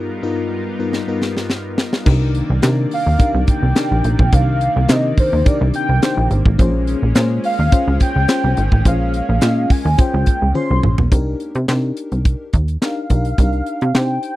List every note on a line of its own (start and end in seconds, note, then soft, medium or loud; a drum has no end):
0.00 2.05 G3 medium
0.00 2.04 B3 medium
0.00 2.04 D#4 medium
0.00 2.04 F4 medium
0.00 2.02 A#4 medium
0.22 0.61 G2 loud
0.22 0.61 B3 medium
0.22 0.61 D#4 medium
0.22 0.61 F4 medium
0.22 0.61 A#4 loud
0.79 0.98 G2 medium
0.79 0.98 B3 medium
0.79 0.98 D#4 medium
0.79 0.98 F4 medium
0.79 0.99 A#4 medium
0.93 snare medium
1.08 1.75 G2 medium
1.08 1.75 B3 medium
1.08 1.75 D#4 medium
1.08 1.75 F4 medium
1.08 1.75 A#4 medium
1.22 snare medium
1.37 snare medium
1.50 snare medium
1.78 snare loud
1.93 snare medium
2.05 2.43 C2 loud
2.05 6.55 C3 medium
2.05 6.55 D#3 medium
2.05 11.08 A#3 medium
2.05 2.45 D4 medium
2.05 2.45 D#4 medium
2.05 2.45 G4 medium
2.05 2.45 A#4 medium
2.05 6.56 D5 medium
2.05 kick loud
2.05 crash loud
2.35 closed hi-hat medium
2.50 2.61 C2 medium
2.62 2.87 C3 loud
2.62 3.02 D4 medium
2.62 3.02 D#4 medium
2.62 3.02 G4 medium
2.62 3.02 A#4 loud
2.62 snare loud
2.62 clap loud
2.62 closed hi-hat medium
2.91 3.45 F5 loud
2.91 open hi-hat medium
3.06 3.17 D#2 medium
3.19 3.58 D4 medium
3.19 3.59 D#4 medium
3.19 3.59 G4 medium
3.19 3.59 A#4 loud
3.19 kick loud
3.19 closed hi-hat medium
3.34 3.46 C2 loud
3.47 4.35 G5 loud
3.47 kick medium
3.47 closed hi-hat medium
3.62 3.74 C2 medium
3.75 4.15 D4 loud
3.75 4.15 D#4 medium
3.75 4.15 G4 medium
3.75 4.15 A#4 medium
3.75 snare loud
3.75 clap medium
3.75 closed hi-hat medium
3.91 4.02 A#1 medium
4.04 4.17 A#1 medium
4.04 closed hi-hat medium
4.19 4.30 B1 medium
4.19 kick medium
4.32 4.69 C2 loud
4.32 4.72 D4 medium
4.32 4.72 D#4 medium
4.32 4.72 G4 medium
4.32 4.72 A#4 medium
4.32 4.92 F5 loud
4.32 kick loud
4.32 closed hi-hat medium
4.61 closed hi-hat medium
4.76 4.87 C2 medium
4.88 5.13 C3 loud
4.88 5.28 D4 medium
4.88 5.28 D#4 medium
4.88 5.28 G4 medium
4.88 5.29 A#4 medium
4.88 5.18 D#5 loud
4.88 snare loud
4.88 clap loud
4.88 closed hi-hat loud
5.18 5.49 C5 loud
5.18 kick loud
5.18 open hi-hat medium
5.33 5.44 D#2 medium
5.45 5.85 D4 medium
5.45 5.85 D#4 medium
5.45 5.85 G4 medium
5.45 5.85 A#4 loud
5.45 5.75 D5 loud
5.45 kick loud
5.45 closed hi-hat loud
5.61 5.72 C2 loud
5.74 6.28 G5 loud
5.74 closed hi-hat medium
5.89 6.00 C2 medium
6.02 6.42 D4 medium
6.02 6.42 D#4 medium
6.02 6.42 G4 medium
6.02 6.42 C5 loud
6.02 snare loud
6.02 clap medium
6.02 closed hi-hat medium
6.17 6.29 A#1 medium
6.31 6.43 G#1 medium
6.31 closed hi-hat medium
6.46 6.57 A1 loud
6.46 kick medium
6.58 6.95 A#1 loud
6.58 11.08 G#3 medium
6.58 6.98 C#4 medium
6.58 11.08 C#4 medium
6.58 6.98 F4 medium
6.58 6.98 G#4 medium
6.58 6.98 C5 loud
6.58 kick loud
6.58 closed hi-hat medium
6.87 closed hi-hat medium
7.02 7.14 A#1 medium
7.15 7.39 A#2 loud
7.15 7.55 C#4 medium
7.15 7.55 F4 medium
7.15 7.55 G#4 medium
7.15 7.55 C5 loud
7.15 snare loud
7.15 clap loud
7.15 closed hi-hat medium
7.44 7.97 F5 medium
7.44 open hi-hat medium
7.59 7.70 D#2 medium
7.72 8.11 C#4 medium
7.72 8.12 F4 medium
7.72 8.12 G#4 medium
7.72 8.12 C5 loud
7.72 kick loud
7.72 closed hi-hat medium
7.87 7.99 C#2 medium
8.00 8.82 G5 loud
8.00 kick medium
8.00 closed hi-hat medium
8.16 8.27 C#2 medium
8.28 8.68 C#4 medium
8.28 8.68 F4 medium
8.28 8.68 G#4 medium
8.28 8.68 C5 loud
8.28 snare loud
8.28 clap medium
8.28 closed hi-hat medium
8.44 8.55 C2 medium
8.57 8.70 G#1 medium
8.57 closed hi-hat medium
8.72 8.83 A1 loud
8.72 kick medium
8.85 9.22 A#1 loud
8.85 9.25 C#4 medium
8.85 9.25 F4 medium
8.85 9.25 G#4 medium
8.85 9.25 C5 medium
8.85 9.13 F5 loud
8.85 kick loud
8.85 closed hi-hat loud
9.14 9.72 F5 loud
9.14 closed hi-hat medium
9.29 9.40 A#1 loud
9.41 9.66 A#2 loud
9.41 9.81 C#4 medium
9.41 9.81 F4 medium
9.41 9.81 G#4 medium
9.41 9.82 D#5 medium
9.41 snare loud
9.41 clap loud
9.41 closed hi-hat medium
9.70 9.99 G#5 medium
9.70 kick loud
9.70 open hi-hat medium
9.85 9.96 D#2 medium
9.98 10.38 C#4 medium
9.98 10.38 F4 medium
9.98 10.38 G#4 medium
9.98 10.38 C5 medium
9.98 10.52 G5 loud
9.98 kick loud
9.98 closed hi-hat medium
10.14 10.25 C#2 medium
10.26 kick medium
10.26 closed hi-hat medium
10.42 10.53 C#2 medium
10.54 10.94 C#4 medium
10.54 10.94 F4 medium
10.54 10.94 G#4 medium
10.54 10.95 C5 loud
10.54 10.96 C6 loud
10.54 high tom medium
10.70 10.82 C2 medium
10.83 10.96 A#1 medium
10.83 mid tom loud
10.98 11.10 B1 medium
10.98 floor tom loud
11.12 11.36 C2 loud
11.12 11.51 D4 medium
11.12 11.51 D#4 medium
11.12 11.51 G4 medium
11.12 11.51 A#4 loud
11.12 kick loud
11.12 closed hi-hat loud
11.40 closed hi-hat medium
11.55 11.66 C3 medium
11.55 closed hi-hat soft
11.68 11.92 C3 loud
11.68 12.46 D4 medium
11.68 12.46 D#4 medium
11.68 12.46 G4 medium
11.68 12.47 A#4 medium
11.68 snare loud
11.68 clap medium
11.97 closed hi-hat medium
12.12 12.36 C2 medium
12.12 closed hi-hat soft
12.25 kick loud
12.25 closed hi-hat medium
12.53 12.77 D#2 loud
12.53 kick medium
12.53 closed hi-hat medium
12.68 closed hi-hat medium
12.82 13.02 D4 medium
12.82 13.02 D#4 medium
12.82 13.02 G4 medium
12.82 13.02 A#4 medium
12.82 13.97 F5 loud
12.82 snare loud
12.82 clap medium
13.10 13.34 B1 medium
13.10 13.30 D4 medium
13.10 13.30 D#4 medium
13.10 13.30 G4 medium
13.10 13.30 A#4 medium
13.10 kick medium
13.10 closed hi-hat medium
13.25 closed hi-hat medium
13.38 13.62 C2 loud
13.38 13.78 D4 medium
13.38 13.78 D#4 medium
13.38 13.78 G4 medium
13.38 13.78 A#4 medium
13.38 kick medium
13.38 closed hi-hat medium
13.53 closed hi-hat soft
13.66 closed hi-hat medium
13.81 13.93 C3 loud
13.81 closed hi-hat soft
13.94 14.19 C3 loud
13.94 14.36 D4 medium
13.94 14.36 D#4 medium
13.94 14.36 G4 medium
13.94 14.36 C5 medium
13.94 14.36 G5 loud
13.94 snare loud
13.94 clap medium
14.23 closed hi-hat medium